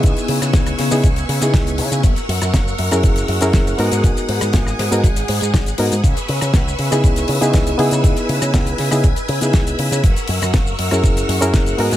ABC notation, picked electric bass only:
X:1
M:4/4
L:1/16
Q:1/4=120
K:C#dor
V:1 name="Picked electric bass" clef=bass
C,, z C, C, C,, z C, C, C,, z C, C, C,,2 C, C, | F,,, z F,, F,, F,,, z F,, F,, F,,, z F,, F,, F,,, z G,, G,, | G,,, z G,, G,, G,,, z G,, G,, G,,, z G,, G,, G,,, z G,, G,, | C,, z C, C, C,, z C, C, C,, z C, C, C,, z C, C, |
C,, z C, C, C,, z C, C, C,, z C, C, C,, z C, C, | F,,, z F,, F,, F,,, z F,, F,, F,,, z F,, F,, F,,, z G,, G,, |]